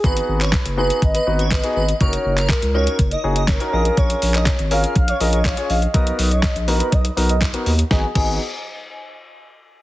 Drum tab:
CC |----------------|----------------|----------------|----------------|
HH |xx-xxx-xxx-xxx-x|xx-xxx-xxx-xxx-x|xxoxxxoxxxoxxxox|xxoxxxoxxxoxxxox|
CP |---xx-------x---|---xx-------x---|---xx-------x---|----x-------x---|
SD |----o-------o---|----o-------o---|----o-------o---|----o-------o---|
BD |o---o---o---o---|o---o---o---o---|o---o---o---o---|o---o---o---o---|

CC |--x-------------|
HH |----------------|
CP |----------------|
SD |o---------------|
BD |o-o-------------|